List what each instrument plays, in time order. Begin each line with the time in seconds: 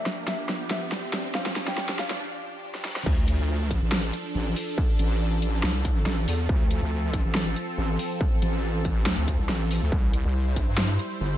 Already playing: supersaw synth F3 D4 G4, grand piano E5, riser
0.06 snare
0.28 grand piano E5, snare, closed hi-hat
0.49 snare
0.71 grand piano E5, snare, closed hi-hat
0.92 snare
1.13 snare, closed hi-hat
1.35 grand piano F5, snare
1.46 snare
1.56 snare, closed hi-hat
1.68 grand piano G5, snare
1.78 snare
1.89 snare
1.99 grand piano F5, snare, closed hi-hat
2.11 snare, closed hi-hat
2.75 snare
2.85 snare
2.96 snare
3.06 wobble bass D2, supersaw synth F3 D4 A4, kick, crash
3.28 closed hi-hat
3.39 wobble bass D2
3.71 kick, closed hi-hat
3.82 wobble bass A1
3.92 snare
4.14 closed hi-hat
4.35 wobble bass A1
4.56 open hi-hat
4.78 kick
4.99 wobble bass A1, closed hi-hat
5.42 closed hi-hat
5.63 wobble bass C2, snare
5.85 kick, closed hi-hat
6.06 wobble bass A1, snare
6.28 wobble bass E2, open hi-hat
6.49 wobble bass D2, supersaw synth C4, kick
6.71 closed hi-hat
6.82 wobble bass D2
7.13 kick, closed hi-hat
7.25 wobble bass A1
7.35 snare
7.56 closed hi-hat
7.78 wobble bass A1
7.99 open hi-hat
8.21 kick
8.42 wobble bass A1, closed hi-hat
8.85 kick, closed hi-hat
9.06 wobble bass D2, snare
9.18 wobble bass D2
9.28 kick, closed hi-hat
9.39 wobble bass C2
9.49 wobble bass A1, snare
9.71 open hi-hat
9.82 wobble bass D2
9.92 wobble bass C2, supersaw synth G3 E4 C5, kick
10.14 closed hi-hat
10.25 wobble bass C2
10.56 kick, closed hi-hat
10.68 wobble bass G2
10.78 snare
10.99 closed hi-hat
11.21 wobble bass G1